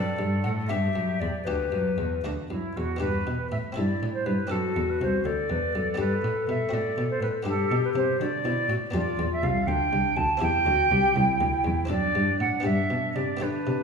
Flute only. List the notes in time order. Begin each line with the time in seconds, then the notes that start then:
Already playing: A4
0.70 G4
1.45 G4
2.24 D4
2.50 E4
2.76 F#4
3.00 B4
3.51 E5
3.77 D5
4.14 C5
4.26 B4
4.51 A4
4.90 B4
5.02 C5
5.26 D5
6.00 B4
6.49 E5
6.73 D5
7.10 C5
7.22 B4
7.47 A4
7.84 B4
7.96 C5
8.21 D5
8.96 D5
9.32 E5
9.44 F5
9.67 G5
10.17 A5
10.42 G5
11.90 D5
12.40 F#5
12.64 E5
13.15 D5
13.42 B4